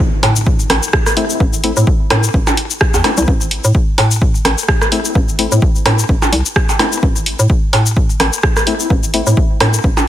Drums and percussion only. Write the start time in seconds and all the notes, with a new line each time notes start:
0.00 kick
0.23 open hi-hat, percussion blips
0.36 cabasa
0.46 kick
0.60 cabasa
0.70 cross-stick, open hi-hat, percussion blips
0.83 cabasa
0.93 kick, cross-stick
1.06 cross-stick, cabasa
1.17 open hi-hat
1.30 cabasa
1.40 kick
1.53 cabasa
1.64 open hi-hat
1.77 cabasa
1.87 kick
2.10 cross-stick, open hi-hat, percussion blips
2.24 cabasa
2.34 kick
2.47 percussion blips, cabasa
2.57 open hi-hat
2.71 cabasa
2.81 kick, cross-stick
2.94 cabasa, percussion blips
3.04 cross-stick, open hi-hat, percussion blips
3.17 cabasa
3.28 kick
3.41 cabasa
3.51 open hi-hat
3.64 cabasa
3.75 kick
3.98 open hi-hat, percussion blips
4.11 cabasa
4.22 kick
4.35 cabasa
4.45 cross-stick, open hi-hat, percussion blips
4.58 cabasa
4.68 kick, cross-stick
4.82 cross-stick, cabasa
4.92 open hi-hat
5.05 cabasa
5.15 kick
5.28 cabasa
5.39 open hi-hat
5.52 cabasa
5.62 kick
5.75 cabasa
5.86 cross-stick, open hi-hat, percussion blips
5.99 cabasa
6.09 kick
6.22 percussion blips, cabasa
6.33 open hi-hat
6.46 cabasa
6.56 kick, cross-stick
6.69 cabasa, percussion blips
6.79 cross-stick, open hi-hat, percussion blips
6.93 cabasa
7.03 kick
7.16 cabasa
7.26 open hi-hat
7.39 cabasa
7.50 kick
7.73 open hi-hat, percussion blips
7.86 cabasa
7.97 kick
8.10 cabasa
8.20 cross-stick, open hi-hat, percussion blips
8.33 cabasa
8.43 kick, cross-stick
8.56 cross-stick, cabasa
8.67 open hi-hat
8.80 cabasa
8.90 kick
9.03 cabasa
9.14 open hi-hat
9.27 cabasa
9.37 kick
9.60 cross-stick, open hi-hat, percussion blips
9.74 cabasa
9.84 kick
9.97 percussion blips, cabasa